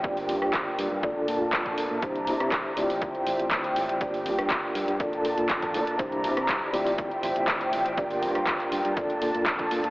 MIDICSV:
0, 0, Header, 1, 6, 480
1, 0, Start_track
1, 0, Tempo, 495868
1, 41, Time_signature, 4, 2, 24, 8
1, 9584, End_track
2, 0, Start_track
2, 0, Title_t, "Violin section"
2, 0, Program_c, 0, 48
2, 0, Note_on_c, 0, 79, 83
2, 40, Note_on_c, 0, 58, 68
2, 980, Note_off_c, 0, 79, 0
2, 1002, Note_on_c, 0, 62, 70
2, 1002, Note_on_c, 0, 81, 77
2, 1941, Note_off_c, 0, 58, 0
2, 1952, Note_off_c, 0, 62, 0
2, 1952, Note_off_c, 0, 81, 0
2, 1959, Note_on_c, 0, 74, 67
2, 1962, Note_on_c, 0, 64, 70
2, 1962, Note_on_c, 0, 82, 78
2, 2673, Note_off_c, 0, 74, 0
2, 2674, Note_off_c, 0, 64, 0
2, 2674, Note_off_c, 0, 82, 0
2, 2678, Note_on_c, 0, 72, 67
2, 2678, Note_on_c, 0, 76, 67
2, 2678, Note_on_c, 0, 79, 85
2, 3867, Note_off_c, 0, 72, 0
2, 3867, Note_off_c, 0, 76, 0
2, 3882, Note_on_c, 0, 58, 68
2, 4818, Note_off_c, 0, 79, 0
2, 4840, Note_on_c, 0, 81, 79
2, 4841, Note_on_c, 0, 62, 70
2, 5782, Note_off_c, 0, 58, 0
2, 5790, Note_off_c, 0, 81, 0
2, 5791, Note_off_c, 0, 62, 0
2, 5797, Note_on_c, 0, 64, 73
2, 5798, Note_on_c, 0, 74, 66
2, 5798, Note_on_c, 0, 82, 76
2, 6512, Note_off_c, 0, 64, 0
2, 6512, Note_off_c, 0, 74, 0
2, 6512, Note_off_c, 0, 82, 0
2, 6520, Note_on_c, 0, 72, 69
2, 6520, Note_on_c, 0, 79, 86
2, 6521, Note_on_c, 0, 76, 69
2, 7709, Note_off_c, 0, 72, 0
2, 7709, Note_off_c, 0, 76, 0
2, 7724, Note_on_c, 0, 65, 73
2, 7724, Note_on_c, 0, 70, 66
2, 8658, Note_off_c, 0, 79, 0
2, 8673, Note_off_c, 0, 65, 0
2, 8673, Note_off_c, 0, 70, 0
2, 8684, Note_on_c, 0, 58, 66
2, 8684, Note_on_c, 0, 62, 68
2, 8684, Note_on_c, 0, 81, 79
2, 9584, Note_off_c, 0, 58, 0
2, 9584, Note_off_c, 0, 62, 0
2, 9584, Note_off_c, 0, 81, 0
2, 9584, End_track
3, 0, Start_track
3, 0, Title_t, "Reed electric piano"
3, 0, Program_c, 1, 4
3, 30, Note_on_c, 1, 58, 80
3, 34, Note_on_c, 1, 62, 71
3, 38, Note_on_c, 1, 65, 70
3, 42, Note_on_c, 1, 67, 73
3, 45, Note_on_c, 1, 74, 85
3, 949, Note_off_c, 1, 58, 0
3, 951, Note_off_c, 1, 62, 0
3, 953, Note_off_c, 1, 65, 0
3, 955, Note_off_c, 1, 67, 0
3, 957, Note_off_c, 1, 74, 0
3, 991, Note_on_c, 1, 58, 78
3, 995, Note_on_c, 1, 62, 73
3, 998, Note_on_c, 1, 65, 72
3, 1003, Note_on_c, 1, 69, 70
3, 1006, Note_on_c, 1, 74, 86
3, 1909, Note_off_c, 1, 58, 0
3, 1911, Note_off_c, 1, 62, 0
3, 1913, Note_off_c, 1, 65, 0
3, 1915, Note_off_c, 1, 69, 0
3, 1917, Note_off_c, 1, 74, 0
3, 1951, Note_on_c, 1, 58, 77
3, 1958, Note_on_c, 1, 64, 71
3, 1962, Note_on_c, 1, 67, 72
3, 1966, Note_on_c, 1, 72, 87
3, 2629, Note_off_c, 1, 58, 0
3, 2633, Note_off_c, 1, 64, 0
3, 2635, Note_off_c, 1, 67, 0
3, 2637, Note_off_c, 1, 72, 0
3, 2672, Note_on_c, 1, 60, 91
3, 2676, Note_on_c, 1, 64, 84
3, 2680, Note_on_c, 1, 65, 83
3, 2684, Note_on_c, 1, 67, 83
3, 2688, Note_on_c, 1, 74, 101
3, 3830, Note_off_c, 1, 60, 0
3, 3832, Note_off_c, 1, 64, 0
3, 3834, Note_off_c, 1, 65, 0
3, 3836, Note_off_c, 1, 67, 0
3, 3838, Note_off_c, 1, 74, 0
3, 3872, Note_on_c, 1, 58, 78
3, 3876, Note_on_c, 1, 62, 71
3, 3880, Note_on_c, 1, 65, 71
3, 3884, Note_on_c, 1, 67, 72
3, 3888, Note_on_c, 1, 74, 85
3, 4790, Note_off_c, 1, 58, 0
3, 4792, Note_off_c, 1, 62, 0
3, 4794, Note_off_c, 1, 65, 0
3, 4796, Note_off_c, 1, 67, 0
3, 4798, Note_off_c, 1, 74, 0
3, 4831, Note_on_c, 1, 58, 78
3, 4835, Note_on_c, 1, 62, 70
3, 4839, Note_on_c, 1, 65, 73
3, 4843, Note_on_c, 1, 69, 72
3, 4846, Note_on_c, 1, 74, 86
3, 5750, Note_off_c, 1, 58, 0
3, 5752, Note_off_c, 1, 62, 0
3, 5753, Note_off_c, 1, 65, 0
3, 5756, Note_off_c, 1, 69, 0
3, 5757, Note_off_c, 1, 74, 0
3, 5792, Note_on_c, 1, 58, 80
3, 5796, Note_on_c, 1, 62, 75
3, 5800, Note_on_c, 1, 64, 71
3, 5804, Note_on_c, 1, 67, 73
3, 5807, Note_on_c, 1, 72, 88
3, 6470, Note_off_c, 1, 58, 0
3, 6472, Note_off_c, 1, 62, 0
3, 6474, Note_off_c, 1, 64, 0
3, 6476, Note_off_c, 1, 67, 0
3, 6478, Note_off_c, 1, 72, 0
3, 6512, Note_on_c, 1, 60, 93
3, 6514, Note_on_c, 1, 64, 83
3, 6519, Note_on_c, 1, 65, 84
3, 6522, Note_on_c, 1, 67, 82
3, 6526, Note_on_c, 1, 74, 103
3, 7670, Note_off_c, 1, 60, 0
3, 7671, Note_off_c, 1, 64, 0
3, 7673, Note_off_c, 1, 65, 0
3, 7675, Note_off_c, 1, 67, 0
3, 7677, Note_off_c, 1, 74, 0
3, 7712, Note_on_c, 1, 58, 78
3, 7717, Note_on_c, 1, 62, 73
3, 7720, Note_on_c, 1, 65, 71
3, 7724, Note_on_c, 1, 67, 72
3, 7728, Note_on_c, 1, 74, 85
3, 8630, Note_off_c, 1, 58, 0
3, 8632, Note_off_c, 1, 62, 0
3, 8634, Note_off_c, 1, 65, 0
3, 8636, Note_off_c, 1, 67, 0
3, 8638, Note_off_c, 1, 74, 0
3, 8672, Note_on_c, 1, 58, 76
3, 8676, Note_on_c, 1, 62, 71
3, 8679, Note_on_c, 1, 65, 72
3, 8684, Note_on_c, 1, 69, 72
3, 8687, Note_on_c, 1, 74, 86
3, 9584, Note_off_c, 1, 58, 0
3, 9584, Note_off_c, 1, 62, 0
3, 9584, Note_off_c, 1, 65, 0
3, 9584, Note_off_c, 1, 69, 0
3, 9584, Note_off_c, 1, 74, 0
3, 9584, End_track
4, 0, Start_track
4, 0, Title_t, "Fingered electric bass"
4, 0, Program_c, 2, 33
4, 39, Note_on_c, 2, 31, 94
4, 281, Note_on_c, 2, 43, 81
4, 295, Note_off_c, 2, 31, 0
4, 377, Note_off_c, 2, 43, 0
4, 405, Note_on_c, 2, 43, 92
4, 495, Note_off_c, 2, 43, 0
4, 519, Note_on_c, 2, 31, 90
4, 616, Note_off_c, 2, 31, 0
4, 760, Note_on_c, 2, 43, 91
4, 857, Note_off_c, 2, 43, 0
4, 885, Note_on_c, 2, 43, 89
4, 975, Note_off_c, 2, 43, 0
4, 998, Note_on_c, 2, 34, 81
4, 1096, Note_off_c, 2, 34, 0
4, 1239, Note_on_c, 2, 46, 78
4, 1336, Note_off_c, 2, 46, 0
4, 1364, Note_on_c, 2, 46, 92
4, 1479, Note_on_c, 2, 34, 102
4, 1494, Note_off_c, 2, 46, 0
4, 1668, Note_off_c, 2, 34, 0
4, 1722, Note_on_c, 2, 46, 81
4, 1818, Note_off_c, 2, 46, 0
4, 1845, Note_on_c, 2, 46, 82
4, 1935, Note_off_c, 2, 46, 0
4, 1959, Note_on_c, 2, 36, 95
4, 2203, Note_on_c, 2, 48, 81
4, 2217, Note_off_c, 2, 36, 0
4, 2298, Note_off_c, 2, 48, 0
4, 2326, Note_on_c, 2, 48, 94
4, 2415, Note_off_c, 2, 48, 0
4, 2440, Note_on_c, 2, 36, 90
4, 2537, Note_off_c, 2, 36, 0
4, 2683, Note_on_c, 2, 38, 92
4, 2779, Note_off_c, 2, 38, 0
4, 2806, Note_on_c, 2, 33, 90
4, 2895, Note_off_c, 2, 33, 0
4, 2920, Note_on_c, 2, 38, 84
4, 3017, Note_off_c, 2, 38, 0
4, 3161, Note_on_c, 2, 33, 90
4, 3258, Note_off_c, 2, 33, 0
4, 3285, Note_on_c, 2, 33, 102
4, 3375, Note_off_c, 2, 33, 0
4, 3401, Note_on_c, 2, 38, 82
4, 3640, Note_on_c, 2, 33, 99
4, 3655, Note_off_c, 2, 38, 0
4, 3737, Note_off_c, 2, 33, 0
4, 3766, Note_on_c, 2, 33, 79
4, 3855, Note_off_c, 2, 33, 0
4, 4123, Note_on_c, 2, 43, 82
4, 4218, Note_off_c, 2, 43, 0
4, 4245, Note_on_c, 2, 43, 95
4, 4335, Note_off_c, 2, 43, 0
4, 4360, Note_on_c, 2, 31, 91
4, 4457, Note_off_c, 2, 31, 0
4, 4599, Note_on_c, 2, 43, 91
4, 4697, Note_off_c, 2, 43, 0
4, 4725, Note_on_c, 2, 43, 92
4, 4815, Note_off_c, 2, 43, 0
4, 4840, Note_on_c, 2, 34, 83
4, 4937, Note_off_c, 2, 34, 0
4, 5083, Note_on_c, 2, 46, 91
4, 5178, Note_off_c, 2, 46, 0
4, 5205, Note_on_c, 2, 46, 102
4, 5295, Note_off_c, 2, 46, 0
4, 5320, Note_on_c, 2, 34, 85
4, 5561, Note_on_c, 2, 46, 102
4, 5575, Note_off_c, 2, 34, 0
4, 5657, Note_off_c, 2, 46, 0
4, 5685, Note_on_c, 2, 46, 76
4, 5775, Note_off_c, 2, 46, 0
4, 5799, Note_on_c, 2, 36, 96
4, 6043, Note_on_c, 2, 48, 81
4, 6057, Note_off_c, 2, 36, 0
4, 6138, Note_off_c, 2, 48, 0
4, 6166, Note_on_c, 2, 48, 98
4, 6256, Note_off_c, 2, 48, 0
4, 6280, Note_on_c, 2, 36, 93
4, 6377, Note_off_c, 2, 36, 0
4, 6520, Note_on_c, 2, 38, 91
4, 6617, Note_off_c, 2, 38, 0
4, 6646, Note_on_c, 2, 33, 88
4, 6736, Note_off_c, 2, 33, 0
4, 6759, Note_on_c, 2, 38, 85
4, 6857, Note_off_c, 2, 38, 0
4, 7002, Note_on_c, 2, 33, 91
4, 7098, Note_off_c, 2, 33, 0
4, 7125, Note_on_c, 2, 33, 104
4, 7215, Note_off_c, 2, 33, 0
4, 7240, Note_on_c, 2, 38, 85
4, 7480, Note_on_c, 2, 33, 101
4, 7494, Note_off_c, 2, 38, 0
4, 7577, Note_off_c, 2, 33, 0
4, 7604, Note_on_c, 2, 33, 82
4, 7694, Note_off_c, 2, 33, 0
4, 7720, Note_on_c, 2, 31, 95
4, 7963, Note_on_c, 2, 43, 82
4, 7977, Note_off_c, 2, 31, 0
4, 8058, Note_off_c, 2, 43, 0
4, 8087, Note_on_c, 2, 43, 93
4, 8176, Note_off_c, 2, 43, 0
4, 8201, Note_on_c, 2, 31, 90
4, 8297, Note_off_c, 2, 31, 0
4, 8443, Note_on_c, 2, 43, 91
4, 8538, Note_off_c, 2, 43, 0
4, 8567, Note_on_c, 2, 43, 91
4, 8656, Note_off_c, 2, 43, 0
4, 8681, Note_on_c, 2, 34, 85
4, 8777, Note_off_c, 2, 34, 0
4, 8923, Note_on_c, 2, 46, 79
4, 9018, Note_off_c, 2, 46, 0
4, 9049, Note_on_c, 2, 46, 93
4, 9160, Note_on_c, 2, 34, 101
4, 9175, Note_off_c, 2, 46, 0
4, 9349, Note_off_c, 2, 34, 0
4, 9404, Note_on_c, 2, 46, 83
4, 9499, Note_off_c, 2, 46, 0
4, 9527, Note_on_c, 2, 46, 81
4, 9584, Note_off_c, 2, 46, 0
4, 9584, End_track
5, 0, Start_track
5, 0, Title_t, "Muted fingered electric bass strokes"
5, 1125, Note_on_c, 9, 29, 42
5, 1221, Note_off_c, 9, 29, 0
5, 4965, Note_on_c, 9, 29, 42
5, 5062, Note_off_c, 9, 29, 0
5, 8809, Note_on_c, 9, 29, 42
5, 8905, Note_off_c, 9, 29, 0
5, 9584, End_track
6, 0, Start_track
6, 0, Title_t, "Drums"
6, 38, Note_on_c, 9, 36, 117
6, 135, Note_off_c, 9, 36, 0
6, 164, Note_on_c, 9, 46, 62
6, 261, Note_off_c, 9, 46, 0
6, 280, Note_on_c, 9, 46, 106
6, 377, Note_off_c, 9, 46, 0
6, 405, Note_on_c, 9, 37, 73
6, 502, Note_off_c, 9, 37, 0
6, 519, Note_on_c, 9, 36, 121
6, 519, Note_on_c, 9, 39, 115
6, 615, Note_off_c, 9, 36, 0
6, 616, Note_off_c, 9, 39, 0
6, 761, Note_on_c, 9, 46, 110
6, 858, Note_off_c, 9, 46, 0
6, 999, Note_on_c, 9, 36, 118
6, 1096, Note_off_c, 9, 36, 0
6, 1240, Note_on_c, 9, 46, 105
6, 1337, Note_off_c, 9, 46, 0
6, 1479, Note_on_c, 9, 36, 116
6, 1481, Note_on_c, 9, 39, 112
6, 1576, Note_off_c, 9, 36, 0
6, 1578, Note_off_c, 9, 39, 0
6, 1604, Note_on_c, 9, 36, 62
6, 1701, Note_off_c, 9, 36, 0
6, 1720, Note_on_c, 9, 46, 106
6, 1817, Note_off_c, 9, 46, 0
6, 1960, Note_on_c, 9, 36, 116
6, 1962, Note_on_c, 9, 42, 75
6, 2057, Note_off_c, 9, 36, 0
6, 2059, Note_off_c, 9, 42, 0
6, 2087, Note_on_c, 9, 42, 34
6, 2183, Note_off_c, 9, 42, 0
6, 2200, Note_on_c, 9, 46, 104
6, 2296, Note_off_c, 9, 46, 0
6, 2326, Note_on_c, 9, 37, 78
6, 2326, Note_on_c, 9, 42, 48
6, 2423, Note_off_c, 9, 37, 0
6, 2423, Note_off_c, 9, 42, 0
6, 2440, Note_on_c, 9, 36, 115
6, 2440, Note_on_c, 9, 39, 112
6, 2441, Note_on_c, 9, 42, 74
6, 2537, Note_off_c, 9, 36, 0
6, 2537, Note_off_c, 9, 39, 0
6, 2538, Note_off_c, 9, 42, 0
6, 2680, Note_on_c, 9, 46, 103
6, 2777, Note_off_c, 9, 46, 0
6, 2807, Note_on_c, 9, 46, 58
6, 2903, Note_off_c, 9, 46, 0
6, 2920, Note_on_c, 9, 36, 116
6, 2922, Note_on_c, 9, 42, 73
6, 3017, Note_off_c, 9, 36, 0
6, 3018, Note_off_c, 9, 42, 0
6, 3046, Note_on_c, 9, 42, 34
6, 3143, Note_off_c, 9, 42, 0
6, 3161, Note_on_c, 9, 46, 101
6, 3258, Note_off_c, 9, 46, 0
6, 3286, Note_on_c, 9, 42, 49
6, 3383, Note_off_c, 9, 42, 0
6, 3400, Note_on_c, 9, 36, 115
6, 3400, Note_on_c, 9, 39, 110
6, 3401, Note_on_c, 9, 42, 73
6, 3497, Note_off_c, 9, 36, 0
6, 3497, Note_off_c, 9, 39, 0
6, 3498, Note_off_c, 9, 42, 0
6, 3526, Note_on_c, 9, 42, 35
6, 3623, Note_off_c, 9, 42, 0
6, 3641, Note_on_c, 9, 46, 104
6, 3738, Note_off_c, 9, 46, 0
6, 3768, Note_on_c, 9, 42, 49
6, 3865, Note_off_c, 9, 42, 0
6, 3880, Note_on_c, 9, 36, 111
6, 3883, Note_on_c, 9, 42, 75
6, 3977, Note_off_c, 9, 36, 0
6, 3980, Note_off_c, 9, 42, 0
6, 4006, Note_on_c, 9, 46, 58
6, 4103, Note_off_c, 9, 46, 0
6, 4122, Note_on_c, 9, 46, 102
6, 4219, Note_off_c, 9, 46, 0
6, 4245, Note_on_c, 9, 37, 80
6, 4245, Note_on_c, 9, 42, 51
6, 4342, Note_off_c, 9, 37, 0
6, 4342, Note_off_c, 9, 42, 0
6, 4359, Note_on_c, 9, 39, 116
6, 4360, Note_on_c, 9, 36, 110
6, 4360, Note_on_c, 9, 42, 78
6, 4456, Note_off_c, 9, 39, 0
6, 4456, Note_off_c, 9, 42, 0
6, 4457, Note_off_c, 9, 36, 0
6, 4600, Note_on_c, 9, 46, 100
6, 4697, Note_off_c, 9, 46, 0
6, 4724, Note_on_c, 9, 42, 52
6, 4821, Note_off_c, 9, 42, 0
6, 4840, Note_on_c, 9, 36, 113
6, 4840, Note_on_c, 9, 42, 76
6, 4936, Note_off_c, 9, 36, 0
6, 4937, Note_off_c, 9, 42, 0
6, 4966, Note_on_c, 9, 42, 35
6, 5063, Note_off_c, 9, 42, 0
6, 5079, Note_on_c, 9, 46, 100
6, 5176, Note_off_c, 9, 46, 0
6, 5204, Note_on_c, 9, 42, 50
6, 5301, Note_off_c, 9, 42, 0
6, 5319, Note_on_c, 9, 36, 111
6, 5319, Note_on_c, 9, 39, 113
6, 5319, Note_on_c, 9, 42, 74
6, 5416, Note_off_c, 9, 36, 0
6, 5416, Note_off_c, 9, 39, 0
6, 5416, Note_off_c, 9, 42, 0
6, 5444, Note_on_c, 9, 36, 58
6, 5444, Note_on_c, 9, 42, 36
6, 5541, Note_off_c, 9, 36, 0
6, 5541, Note_off_c, 9, 42, 0
6, 5560, Note_on_c, 9, 46, 98
6, 5656, Note_off_c, 9, 46, 0
6, 5684, Note_on_c, 9, 42, 51
6, 5781, Note_off_c, 9, 42, 0
6, 5799, Note_on_c, 9, 36, 109
6, 5801, Note_on_c, 9, 42, 82
6, 5896, Note_off_c, 9, 36, 0
6, 5898, Note_off_c, 9, 42, 0
6, 5926, Note_on_c, 9, 42, 36
6, 6022, Note_off_c, 9, 42, 0
6, 6041, Note_on_c, 9, 46, 101
6, 6138, Note_off_c, 9, 46, 0
6, 6166, Note_on_c, 9, 37, 80
6, 6166, Note_on_c, 9, 42, 53
6, 6263, Note_off_c, 9, 37, 0
6, 6263, Note_off_c, 9, 42, 0
6, 6279, Note_on_c, 9, 36, 112
6, 6282, Note_on_c, 9, 39, 116
6, 6282, Note_on_c, 9, 42, 82
6, 6376, Note_off_c, 9, 36, 0
6, 6379, Note_off_c, 9, 39, 0
6, 6379, Note_off_c, 9, 42, 0
6, 6521, Note_on_c, 9, 46, 97
6, 6618, Note_off_c, 9, 46, 0
6, 6645, Note_on_c, 9, 46, 56
6, 6742, Note_off_c, 9, 46, 0
6, 6759, Note_on_c, 9, 36, 110
6, 6761, Note_on_c, 9, 42, 78
6, 6856, Note_off_c, 9, 36, 0
6, 6858, Note_off_c, 9, 42, 0
6, 6886, Note_on_c, 9, 42, 36
6, 6983, Note_off_c, 9, 42, 0
6, 7000, Note_on_c, 9, 46, 99
6, 7097, Note_off_c, 9, 46, 0
6, 7124, Note_on_c, 9, 42, 53
6, 7221, Note_off_c, 9, 42, 0
6, 7239, Note_on_c, 9, 36, 109
6, 7239, Note_on_c, 9, 39, 113
6, 7240, Note_on_c, 9, 42, 80
6, 7336, Note_off_c, 9, 36, 0
6, 7336, Note_off_c, 9, 39, 0
6, 7336, Note_off_c, 9, 42, 0
6, 7365, Note_on_c, 9, 42, 36
6, 7462, Note_off_c, 9, 42, 0
6, 7481, Note_on_c, 9, 46, 97
6, 7578, Note_off_c, 9, 46, 0
6, 7605, Note_on_c, 9, 42, 55
6, 7702, Note_off_c, 9, 42, 0
6, 7720, Note_on_c, 9, 36, 113
6, 7721, Note_on_c, 9, 42, 84
6, 7817, Note_off_c, 9, 36, 0
6, 7817, Note_off_c, 9, 42, 0
6, 7846, Note_on_c, 9, 46, 58
6, 7943, Note_off_c, 9, 46, 0
6, 7962, Note_on_c, 9, 46, 103
6, 8059, Note_off_c, 9, 46, 0
6, 8085, Note_on_c, 9, 37, 78
6, 8085, Note_on_c, 9, 42, 54
6, 8182, Note_off_c, 9, 37, 0
6, 8182, Note_off_c, 9, 42, 0
6, 8200, Note_on_c, 9, 36, 111
6, 8200, Note_on_c, 9, 39, 121
6, 8201, Note_on_c, 9, 42, 84
6, 8297, Note_off_c, 9, 36, 0
6, 8297, Note_off_c, 9, 39, 0
6, 8297, Note_off_c, 9, 42, 0
6, 8325, Note_on_c, 9, 39, 37
6, 8325, Note_on_c, 9, 42, 37
6, 8422, Note_off_c, 9, 39, 0
6, 8422, Note_off_c, 9, 42, 0
6, 8440, Note_on_c, 9, 46, 101
6, 8537, Note_off_c, 9, 46, 0
6, 8566, Note_on_c, 9, 42, 53
6, 8662, Note_off_c, 9, 42, 0
6, 8681, Note_on_c, 9, 36, 110
6, 8682, Note_on_c, 9, 42, 79
6, 8778, Note_off_c, 9, 36, 0
6, 8779, Note_off_c, 9, 42, 0
6, 8807, Note_on_c, 9, 42, 38
6, 8904, Note_off_c, 9, 42, 0
6, 8922, Note_on_c, 9, 46, 99
6, 9019, Note_off_c, 9, 46, 0
6, 9047, Note_on_c, 9, 42, 53
6, 9143, Note_off_c, 9, 42, 0
6, 9161, Note_on_c, 9, 36, 110
6, 9161, Note_on_c, 9, 39, 120
6, 9161, Note_on_c, 9, 42, 81
6, 9258, Note_off_c, 9, 36, 0
6, 9258, Note_off_c, 9, 39, 0
6, 9258, Note_off_c, 9, 42, 0
6, 9285, Note_on_c, 9, 36, 59
6, 9286, Note_on_c, 9, 42, 38
6, 9381, Note_off_c, 9, 36, 0
6, 9382, Note_off_c, 9, 42, 0
6, 9401, Note_on_c, 9, 46, 99
6, 9498, Note_off_c, 9, 46, 0
6, 9524, Note_on_c, 9, 42, 55
6, 9584, Note_off_c, 9, 42, 0
6, 9584, End_track
0, 0, End_of_file